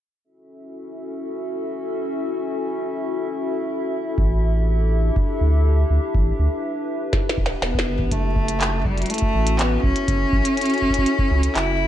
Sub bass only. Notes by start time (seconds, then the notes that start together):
4.18 A1
5.41 D2
5.90 D2
6.15 A1
6.39 D2
7.38 E1
7.62 E1
7.87 G1
7.99 A1
8.11 F#1
9.34 A1
9.83 B1
10.08 F#1
10.33 A1
11.31 C#2
11.56 F#1